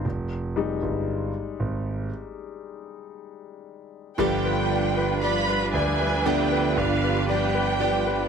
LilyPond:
<<
  \new Staff \with { instrumentName = "Violin section" } { \time 4/4 \key g \phrygian \tempo 4 = 58 r1 | g''4 b''8 aes''8 g''8 f''8 g''4 | }
  \new Staff \with { instrumentName = "Upright piano" } { \time 4/4 \key g \phrygian r8 <g aes ees'>2.~ <g aes ees'>8 | g16 b'16 d''16 b'16 d''16 b'16 d''16 b'16 d'16 b'16 d''16 b'16 d''16 b'16 d''16 b'16 | }
  \new Staff \with { instrumentName = "String section" } { \time 4/4 \key g \phrygian << { r1 | <g d' b'>1 | } \\ { r1 | f'2 g'2 | } >> }
  \new Staff \with { instrumentName = "Steel-string acoustic guitar" } { \time 4/4 \key g \phrygian r1 | <g, d f b f' g'>4 <f b f' g'>4 <g, d f b f' g'>4 <f b f' g'>8 <f b f' g'>8 | }
  \new Staff \with { instrumentName = "Grand piano" } { \clef bass \time 4/4 \key g \phrygian f,,8. g,,8 r16 aes,,8 r2 | g,,4. d,4 g,,4. | }
>>